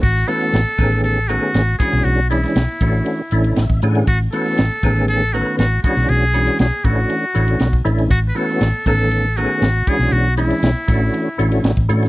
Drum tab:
CC |x---------------|----------------|----------------|----------------|
RD |--xxx-xxx-x-x-xx|x-xxx-x-x-xxx-xx|x-xxx-xxx-x-x-xx|x-xxx-x-x-xxx-xx|
HH |--p---p---p---p-|--p---p---p---p-|--p---p---p---p-|--p---p---p---p-|
SD |---oo-------o---|---oo-------o---|---oo-o-----o--o|----o-------o---|
BD |o-----o-------o-|------o------o--|o-----o-------o-|------o------o--|

CC |----------------|----------------|
RD |x-xxx-xxx-x-x-xx|x-xxx-x-x-xxx-xx|
HH |--p---p---p---p-|--p---p---p---p-|
SD |---oo-o-----o--o|----o-------o--o|
BD |o-----o-------o-|------o------o--|